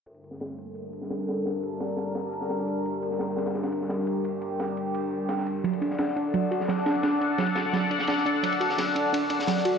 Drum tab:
RD |xxx-x-x-x-x-x-x-|x-x-xxx-x-x-x-x-|xxx-x-xxxxx-x-x-|x-x-xxx-x---x-x-|
SD |---ooo-----oooo-|o---o-o-o--ooo--|---ooooooo-ooo--|----o-------oo--|

RD |xxx-x-x-x-x-x-x-|x-x-xxx-x-x-x-x-|xxx-x-x-x-x-x-x-|
SD |---ooo-----oooo-|o---o-o-o--ooo--|---ooo-----ooo--|